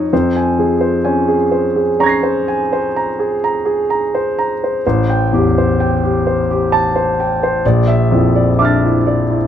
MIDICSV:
0, 0, Header, 1, 2, 480
1, 0, Start_track
1, 0, Tempo, 940439
1, 58, Time_signature, 5, 2, 24, 8
1, 4834, End_track
2, 0, Start_track
2, 0, Title_t, "Grand piano"
2, 0, Program_c, 0, 0
2, 0, Control_c, 0, 64, 127
2, 0, Note_on_c, 0, 41, 60
2, 0, Note_on_c, 0, 53, 45
2, 0, Note_on_c, 0, 63, 46
2, 0, Note_on_c, 0, 73, 51
2, 0, Note_on_c, 0, 75, 55
2, 0, Note_on_c, 0, 87, 39
2, 0, Note_on_c, 0, 89, 39
2, 0, Note_on_c, 0, 92, 39
2, 0, Note_on_c, 0, 97, 40
2, 54, Note_off_c, 0, 63, 0
2, 56, Note_off_c, 0, 97, 0
2, 66, Note_off_c, 0, 41, 0
2, 66, Note_on_c, 0, 41, 59
2, 67, Note_on_c, 0, 72, 55
2, 68, Note_off_c, 0, 53, 0
2, 68, Control_c, 0, 64, 0
2, 69, Note_off_c, 0, 73, 0
2, 69, Note_off_c, 0, 89, 0
2, 69, Note_off_c, 0, 92, 0
2, 70, Note_off_c, 0, 75, 0
2, 72, Note_off_c, 0, 87, 0
2, 144, Control_c, 0, 64, 127
2, 186, Note_on_c, 0, 80, 52
2, 257, Note_off_c, 0, 72, 0
2, 300, Note_on_c, 0, 53, 46
2, 302, Note_on_c, 0, 68, 50
2, 377, Note_off_c, 0, 80, 0
2, 412, Note_on_c, 0, 72, 50
2, 496, Note_off_c, 0, 68, 0
2, 533, Note_on_c, 0, 80, 52
2, 536, Note_on_c, 0, 61, 49
2, 611, Note_off_c, 0, 72, 0
2, 654, Note_on_c, 0, 68, 49
2, 688, Note_off_c, 0, 53, 0
2, 731, Note_off_c, 0, 80, 0
2, 773, Note_on_c, 0, 72, 50
2, 851, Note_off_c, 0, 68, 0
2, 898, Note_on_c, 0, 68, 49
2, 924, Note_off_c, 0, 61, 0
2, 971, Note_off_c, 0, 72, 0
2, 1019, Note_on_c, 0, 61, 45
2, 1022, Note_on_c, 0, 82, 66
2, 1025, Note_on_c, 0, 85, 38
2, 1038, Note_on_c, 0, 92, 41
2, 1053, Note_on_c, 0, 94, 39
2, 1067, Note_on_c, 0, 96, 38
2, 1094, Note_off_c, 0, 68, 0
2, 1139, Note_on_c, 0, 72, 55
2, 1217, Note_off_c, 0, 82, 0
2, 1266, Note_on_c, 0, 80, 57
2, 1337, Note_off_c, 0, 72, 0
2, 1391, Note_on_c, 0, 72, 54
2, 1409, Note_off_c, 0, 61, 0
2, 1460, Note_off_c, 0, 80, 0
2, 1513, Note_on_c, 0, 82, 53
2, 1581, Note_off_c, 0, 72, 0
2, 1629, Note_on_c, 0, 68, 45
2, 1701, Note_off_c, 0, 82, 0
2, 1756, Note_on_c, 0, 82, 58
2, 1819, Note_off_c, 0, 68, 0
2, 1865, Note_on_c, 0, 68, 52
2, 1943, Note_off_c, 0, 82, 0
2, 1992, Note_on_c, 0, 82, 54
2, 2059, Note_off_c, 0, 68, 0
2, 2116, Note_on_c, 0, 72, 50
2, 2183, Note_off_c, 0, 82, 0
2, 2238, Note_on_c, 0, 82, 57
2, 2306, Note_off_c, 0, 72, 0
2, 2367, Note_on_c, 0, 72, 51
2, 2427, Note_off_c, 0, 82, 0
2, 2450, Note_off_c, 0, 85, 0
2, 2454, Note_off_c, 0, 41, 0
2, 2457, Note_off_c, 0, 92, 0
2, 2464, Note_off_c, 0, 94, 0
2, 2471, Note_off_c, 0, 96, 0
2, 2475, Note_off_c, 0, 72, 0
2, 2480, Control_c, 0, 64, 0
2, 2483, Note_on_c, 0, 33, 65
2, 2483, Note_on_c, 0, 72, 58
2, 2559, Control_c, 0, 64, 127
2, 2601, Note_on_c, 0, 79, 60
2, 2668, Note_off_c, 0, 72, 0
2, 2719, Note_on_c, 0, 40, 50
2, 2723, Note_on_c, 0, 67, 57
2, 2785, Note_off_c, 0, 79, 0
2, 2848, Note_on_c, 0, 72, 51
2, 2906, Note_off_c, 0, 67, 0
2, 2961, Note_on_c, 0, 79, 57
2, 3029, Note_off_c, 0, 72, 0
2, 3078, Note_on_c, 0, 67, 52
2, 3096, Note_off_c, 0, 40, 0
2, 3147, Note_off_c, 0, 79, 0
2, 3198, Note_on_c, 0, 72, 54
2, 3266, Note_off_c, 0, 67, 0
2, 3320, Note_on_c, 0, 67, 55
2, 3385, Note_off_c, 0, 72, 0
2, 3432, Note_on_c, 0, 81, 70
2, 3504, Note_off_c, 0, 67, 0
2, 3550, Note_on_c, 0, 72, 56
2, 3617, Note_off_c, 0, 81, 0
2, 3675, Note_on_c, 0, 79, 57
2, 3734, Note_off_c, 0, 72, 0
2, 3794, Note_on_c, 0, 72, 57
2, 3855, Note_off_c, 0, 79, 0
2, 3881, Note_off_c, 0, 33, 0
2, 3901, Control_c, 0, 64, 0
2, 3903, Note_off_c, 0, 72, 0
2, 3906, Note_on_c, 0, 34, 67
2, 3908, Note_on_c, 0, 74, 58
2, 3985, Control_c, 0, 64, 127
2, 4019, Note_on_c, 0, 76, 68
2, 4091, Note_off_c, 0, 74, 0
2, 4140, Note_on_c, 0, 64, 54
2, 4144, Note_on_c, 0, 41, 52
2, 4207, Note_off_c, 0, 76, 0
2, 4264, Note_on_c, 0, 74, 53
2, 4329, Note_off_c, 0, 64, 0
2, 4383, Note_on_c, 0, 76, 58
2, 4384, Note_on_c, 0, 86, 44
2, 4388, Note_on_c, 0, 62, 55
2, 4400, Note_on_c, 0, 89, 42
2, 4414, Note_on_c, 0, 93, 45
2, 4452, Note_off_c, 0, 74, 0
2, 4520, Note_on_c, 0, 64, 50
2, 4525, Note_off_c, 0, 41, 0
2, 4573, Note_off_c, 0, 76, 0
2, 4628, Note_on_c, 0, 74, 54
2, 4703, Note_off_c, 0, 64, 0
2, 4748, Note_on_c, 0, 64, 50
2, 4771, Note_off_c, 0, 62, 0
2, 4818, Note_off_c, 0, 74, 0
2, 4834, Note_off_c, 0, 34, 0
2, 4834, Note_off_c, 0, 64, 0
2, 4834, Note_off_c, 0, 86, 0
2, 4834, Note_off_c, 0, 89, 0
2, 4834, Note_off_c, 0, 93, 0
2, 4834, End_track
0, 0, End_of_file